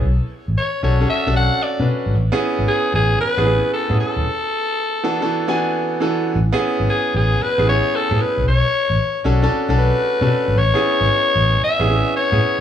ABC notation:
X:1
M:4/4
L:1/16
Q:"Swing 16ths" 1/4=114
K:A
V:1 name="Alto saxophone"
z4 c2 c2 e2 f2 d2 z2 | z4 G2 G2 B4 A2 A2- | A12 z4 | z4 G2 G2 B2 c2 A2 B2 |
c6 z4 B6 | c8 e4 c4 |]
V:2 name="Grand piano"
z6 [CDFA] [CDFA] z [CDFA]3 z [CDFB]3 | z [B,CEG]4- [B,CEG] z3 [B,CEG] [B,CEG]2 z [B,CEG]3 | z6 [E,B,DFA] [E,B,DFA] z [E,B,DFg]3 z [E,B,DFA]3 | z [B,CEG]4- [B,CEG] z3 [B,CEG] [B,CEG]2 z [B,CEG]3 |
z6 [CDFA] [CDFA] z [CDFA]3 z [CDFA]3 | z [B,CEG]4- [B,CEG] z3 [B,CEG] [B,CEG]2 z [B,CEG]3 |]
V:3 name="Fingered electric bass" clef=bass
B,,, z2 A,,, z2 B,,,2 z B,,,2 z2 B,, z G,,, | A,,, z2 G,,, z2 A,,,2 z A,,,2 z2 A,, z ^D,,, | z16 | A,,, z2 G,,, z2 A,,,2 z A,,,2 z2 A,, z _B,,, |
B,,, z2 A,,, z2 B,,,2 z B,,,2 z2 B,, z G,,, | A,,, z2 G,,, z2 A,,,2 z A,,,2 z2 A,, z2 |]